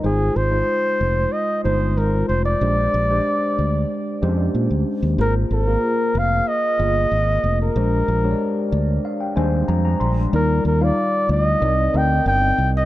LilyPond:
<<
  \new Staff \with { instrumentName = "Flugelhorn" } { \time 4/4 \key aes \lydian \tempo 4 = 93 aes'8 c''4. ees''8 c''8 bes'8 c''16 d''16~ | d''2. r4 | bes'8 bes'4 f''8 ees''4.~ ees''16 bes'16~ | bes'4.~ bes'16 r2 r16 |
bes'8 bes'16 d''8. ees''4 g''8 g''8. ees''16 | }
  \new Staff \with { instrumentName = "Tine electric piano" } { \time 4/4 \key aes \lydian << { r1 | r1 | r1 | r4. d''8 f''16 g''16 aes''8 bes''16 bes''16 c'''8 |
r1 | } \\ { <aes ees' f' c''>8. <aes ees' f' c''>4. r16 <aes ees' f' c''>4. | <aes d' g' c''>8. <aes d' g' c''>4. r16 <aes des' d' g' c''>4. | <bes f' aes' c''>8. <bes f' aes' bes'>4. r16 <bes f' aes' ees''>4. | <aes d' g' c''>8. <aes d' g' des'' d''>4. r16 <g aes d' c''>4. |
<g ees' f' d''>8. <g ees' f' f''>4~ <g ees' f' f''>16 <c' ees' bes' d''>8 <c' ees' bes' ees''>4. | } >> }
  \new Staff \with { instrumentName = "Fingered electric bass" } { \clef bass \time 4/4 \key aes \lydian aes,,8 aes,,8 r8 f,,8 r8 g,,8 aes,,8 f,,8 | bes,,8 bes,,8 r8 d,8 r8 f,8 bes,16 d,16 r16 ees,16 | aes,,8 aes,,8 r8 f,,8 r8 g,,8 aes,,8 f,,8 | bes,,8 bes,,8 r8 d,8 r8 ees,8 f,8 bes,,8 |
ees,8 ees,8 r8 d,8 c,8 d,8 g,,8 c,8 | }
>>